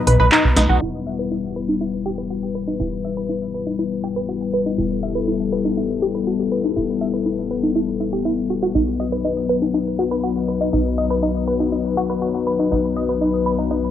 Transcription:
Already playing: synth drone E2 B2, analog synth pad F#3 B3 D#4 B4
0.07 analog synth bass B1, synth arpeggio sound B4, open hi-hat, mid tom
0.20 analog synth bass B1, synth arpeggio sound B4
0.32 synth arpeggio sound D#4, clap
0.44 analog synth bass C2
0.57 analog synth bass C2, synth arpeggio sound D#4, snare, open hi-hat
0.69 analog synth bass C2, synth arpeggio sound F#4
0.81 analog synth bass E1, analog synth pad G3 B3 E4 B4, synth arpeggio sound E4
1.06 synth arpeggio sound E5
1.19 synth arpeggio sound B4
1.31 synth arpeggio sound E4
1.56 synth arpeggio sound B4
1.68 synth arpeggio sound D#4
1.81 synth arpeggio sound E4
2.05 synth arpeggio sound G4
2.18 synth arpeggio sound B4
2.30 synth arpeggio sound F#4
2.55 synth arpeggio sound B4
2.67 synth arpeggio sound D#4
2.80 analog synth bass E1, synth arpeggio sound E4
3.05 synth arpeggio sound E5
3.17 synth arpeggio sound B4
3.29 synth arpeggio sound E4
3.54 synth arpeggio sound B4
3.67 synth arpeggio sound D#4
3.79 synth arpeggio sound E4
4.04 synth arpeggio sound G4
4.16 synth arpeggio sound B4
4.29 synth arpeggio sound F#4
4.53 synth arpeggio sound B4
4.66 synth arpeggio sound D#4
4.78 analog synth bass E1, synth arpeggio sound E4, analog synth pad A4
5.03 synth arpeggio sound E5
5.15 synth arpeggio sound B4
5.28 synth arpeggio sound E4
5.53 synth arpeggio sound B4
5.65 synth arpeggio sound D#4
5.77 synth arpeggio sound E4
6.02 synth arpeggio sound G4
6.15 synth arpeggio sound B4
6.27 synth arpeggio sound F#4
6.52 synth arpeggio sound B4
6.64 synth arpeggio sound D#4
6.76 analog synth bass E1, synth arpeggio sound E4
7.01 synth arpeggio sound E5
7.14 synth arpeggio sound B4
7.26 synth arpeggio sound E4
7.51 synth arpeggio sound B4
7.63 synth arpeggio sound D#4
7.76 synth arpeggio sound E4
8.00 synth arpeggio sound E4
8.13 synth arpeggio sound G4
8.25 synth arpeggio sound E4
8.50 synth arpeggio sound F#4
8.63 synth arpeggio sound F#4
8.75 analog synth bass B1, analog synth pad F#3 D#4 B4, synth arpeggio sound D#4
9.00 synth arpeggio sound D#5
9.12 synth arpeggio sound B4
9.24 synth arpeggio sound D#4
9.49 synth arpeggio sound B4
9.62 synth arpeggio sound D#4
9.74 synth arpeggio sound D#4
9.99 synth arpeggio sound F#4
10.11 synth arpeggio sound B4
10.24 synth arpeggio sound F#4
10.48 synth arpeggio sound B4
10.61 synth arpeggio sound D#4
10.73 analog synth bass B1, synth arpeggio sound D#4
10.98 synth arpeggio sound D#5
11.10 synth arpeggio sound B4
11.23 synth arpeggio sound D#4
11.47 synth arpeggio sound B4
11.60 synth arpeggio sound D#4
11.72 synth arpeggio sound D#4
11.97 synth arpeggio sound F#4
12.10 synth arpeggio sound B4
12.22 synth arpeggio sound F#4
12.47 synth arpeggio sound B4
12.59 synth arpeggio sound D#4
12.72 analog synth bass B1, synth arpeggio sound D#4
12.96 synth arpeggio sound D#5
13.09 synth arpeggio sound B4
13.21 synth arpeggio sound D#4
13.46 synth arpeggio sound B4
13.59 synth arpeggio sound D#4
13.71 synth arpeggio sound D#4

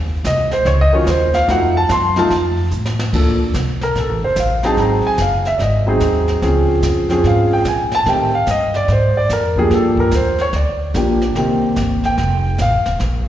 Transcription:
Already playing: upright bass D#2
0.24 upright bass C2, grand piano D#5, kick, snare, hi-hat pedal
0.51 grand piano C5, snare
0.65 upright bass C#2, grand piano C#5, brush sweep, kick, snare
0.81 grand piano D#5
0.93 grand piano D#3 F#3 C#4 F4 C#5
1.06 upright bass D#2, grand piano C5, kick, snare, hi-hat pedal
1.34 grand piano F5, snare
1.48 upright bass F2, grand piano F3 A3 D#4 F#4 F#5, brush sweep, kick, snare
1.77 grand piano A5
1.89 upright bass F#2, grand piano C6, kick, snare, hi-hat pedal
2.16 grand piano F3 A3 D#4 F4 A5, snare
2.30 upright bass F2, brush sweep, kick, snare
2.71 upright bass A2, hi-hat pedal
2.86 snare
3.00 snare
3.13 upright bass D2, grand piano F3 A#3 D4 A4, brush sweep, kick, snare, crash
3.54 upright bass C2, kick, snare, hi-hat pedal
3.81 grand piano A#4, snare
3.95 upright bass A#1, brush sweep, kick, snare
4.00 grand piano A4
4.09 upright bass A1
4.23 upright bass F1, grand piano C5
4.36 upright bass A1, kick, snare, hi-hat pedal
4.40 grand piano F5
4.63 grand piano F#3 C4 D#4 G#4 A5, snare
4.77 upright bass G#1, grand piano A#5, brush sweep, kick, snare
5.07 grand piano G#5
5.18 upright bass F#1, kick, snare, hi-hat pedal
5.22 grand piano F5
5.45 grand piano E5, snare
5.58 upright bass G#1, grand piano D5, brush sweep, kick, snare
5.62 grand piano D#5
5.86 grand piano F#3 C4 D#4 G#4
6.00 upright bass D#2, kick, snare, hi-hat pedal
6.28 snare
6.42 upright bass C#2, grand piano F3 C4 C#4 G#4, brush sweep, kick, snare
6.82 upright bass F2, kick, snare, hi-hat pedal
7.09 grand piano F3 C4 C#4 G#4, snare
7.24 upright bass G#2, grand piano F5, brush sweep, kick, snare
7.53 grand piano G5
7.65 upright bass A#2, grand piano G#5, kick, snare, hi-hat pedal
7.92 grand piano A5, snare
8.06 upright bass A2, grand piano D#3 A3 C4 G4 G5, brush sweep, kick, snare
8.35 grand piano F5
8.46 upright bass G2, kick, snare, hi-hat pedal
8.51 grand piano D#5
8.74 grand piano D5, snare
8.88 upright bass G#2, brush sweep, kick, snare
8.92 grand piano C5
9.17 grand piano D5
9.29 upright bass F2, grand piano A#4, kick, snare, hi-hat pedal
9.56 grand piano F3 A#3 D4 G4 G#4, kick
9.70 upright bass G2, grand piano A4, brush sweep, snare
9.97 grand piano A#4, kick
10.11 upright bass D#2, kick, snare, hi-hat pedal
10.15 grand piano C5
10.38 grand piano C#5, snare
10.53 upright bass D2, grand piano D5, brush sweep, kick, snare
10.94 upright bass A#1, grand piano F3 A#3 D4 G4, kick, snare, hi-hat pedal
11.22 snare
11.35 upright bass C2, grand piano D#3 A#3 C4 G4, brush sweep, kick, snare
11.76 upright bass G1, kick, snare, hi-hat pedal
12.04 grand piano G5, snare
12.18 upright bass F1, brush sweep, kick, snare
12.58 upright bass A1, grand piano F5, kick, snare, hi-hat pedal
12.72 upright bass F1
12.86 upright bass D#1, snare
12.99 upright bass A#1, brush sweep, kick, snare

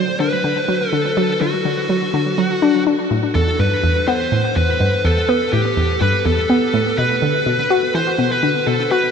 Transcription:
Already playing: lead electric guitar C5
0.20 synth arpeggio sound D3, lead electric guitar B4
0.44 synth arpeggio sound D3
0.69 synth arpeggio sound F#3
0.90 synth arpeggio sound D3, lead electric guitar A4
1.17 synth arpeggio sound F#3, lead electric guitar A4
1.41 synth arpeggio sound D3, lead electric guitar F#4
1.65 synth arpeggio sound D3
1.89 synth arpeggio sound F#3
2.14 synth arpeggio sound D3
2.38 synth arpeggio sound F#3
2.62 synth arpeggio sound D4
2.87 synth arpeggio sound D4
3.11 synth arpeggio sound A2
3.35 synth arpeggio sound E2, lead electric guitar A4
3.59 synth arpeggio sound G2, lead electric guitar B4
3.84 synth arpeggio sound E2
4.08 synth arpeggio sound B3, lead electric guitar C5
4.32 synth arpeggio sound A2
4.56 synth arpeggio sound E2, lead electric guitar B4
4.80 synth arpeggio sound G2
5.05 synth arpeggio sound E2, lead electric guitar A4
5.29 synth arpeggio sound B3
5.53 synth arpeggio sound A2, lead electric guitar G4
5.77 synth arpeggio sound E2
6.01 synth arpeggio sound G2, lead electric guitar B4
6.25 synth arpeggio sound E2, lead electric guitar A4
6.50 synth arpeggio sound B3
6.74 synth arpeggio sound A2
6.98 synth arpeggio sound B2, lead electric guitar B4
7.22 synth arpeggio sound D3
7.46 synth arpeggio sound B2
7.70 synth arpeggio sound F#4
7.95 synth arpeggio sound E3, lead electric guitar C5
8.19 synth arpeggio sound B2
8.32 lead electric guitar B4
8.43 synth arpeggio sound D3
8.67 synth arpeggio sound B2, lead electric guitar A4
8.91 synth arpeggio sound F#4, lead electric guitar B4

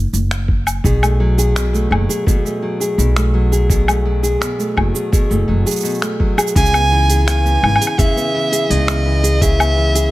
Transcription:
0.13 upright bass F#1, cabasa
0.31 finger snap, cabasa
0.48 kick
0.67 cabasa, low woodblock
0.84 upright bass B1, nylon-string guitar B2 G#4, kick, cabasa
1.02 nylon-string guitar A3, cabasa, low woodblock
1.20 nylon-string guitar F#3
1.38 nylon-string guitar G#4, cabasa
1.55 nylon-string guitar B2, finger snap, cabasa
1.73 nylon-string guitar A3, cabasa
1.91 upright bass F#1, nylon-string guitar F#3, low woodblock
2.09 nylon-string guitar G#4, cabasa
2.26 upright bass D#2, nylon-string guitar B2 G#4, kick, cabasa
2.45 nylon-string guitar A3, cabasa
2.62 nylon-string guitar F#3
2.80 nylon-string guitar G#4, cabasa
2.98 upright bass B1, nylon-string guitar B2, cabasa
3.16 nylon-string guitar A3, finger snap, cabasa
3.34 nylon-string guitar F#3
3.52 nylon-string guitar G#4, cabasa
3.70 nylon-string guitar B2 G#4, kick, cabasa
3.88 nylon-string guitar A3, cabasa, low woodblock
4.05 nylon-string guitar F#3
4.23 nylon-string guitar G#4, cabasa
4.41 nylon-string guitar B2, finger snap, cabasa
4.59 nylon-string guitar A3, cabasa
4.77 upright bass F#1, nylon-string guitar F#3, kick, low woodblock
4.95 nylon-string guitar G#4, cabasa
5.12 nylon-string guitar B2 G#4, kick, cabasa
5.30 upright bass F#1, nylon-string guitar A3, cabasa
5.48 upright bass F#1, nylon-string guitar F#3
5.66 nylon-string guitar G#4, cabasa
5.71 cabasa
5.76 cabasa
5.80 nylon-string guitar B2, cabasa
5.85 cabasa
5.90 cabasa
5.94 cabasa
5.98 nylon-string guitar A3, finger snap, cabasa
6.03 cabasa
6.20 nylon-string guitar F#3, kick
6.37 nylon-string guitar G#4, cabasa, low woodblock
6.47 cabasa
6.55 upright bass C#2, nylon-string guitar C#3 G#4, violin G#5, kick, open hi-hat, cabasa
6.66 cabasa
6.73 nylon-string guitar B3, cabasa, low woodblock
6.92 nylon-string guitar E3
7.09 nylon-string guitar G#4, open hi-hat, cabasa
7.27 nylon-string guitar C#3, violin G#5, finger snap, open hi-hat, cabasa
7.45 nylon-string guitar B3, cabasa
7.63 upright bass G#1, nylon-string guitar E3, low woodblock
7.76 low woodblock
7.81 nylon-string guitar G#4, open hi-hat, cabasa
7.87 low woodblock
7.98 upright bass E2, nylon-string guitar C#3 G#4, violin E5, kick, open hi-hat, cabasa
8.16 nylon-string guitar B3, cabasa
8.34 nylon-string guitar E3
8.52 nylon-string guitar G#4, open hi-hat, cabasa
8.70 upright bass C#2, nylon-string guitar C#3, violin D#5, open hi-hat
8.87 nylon-string guitar B3, finger snap, cabasa
9.05 nylon-string guitar E3
9.23 nylon-string guitar G#4, open hi-hat, cabasa
9.41 nylon-string guitar C#3 G#4, violin E5, kick, open hi-hat, cabasa
9.59 nylon-string guitar B3, cabasa, low woodblock
9.77 nylon-string guitar E3
9.95 nylon-string guitar G#4, open hi-hat, cabasa

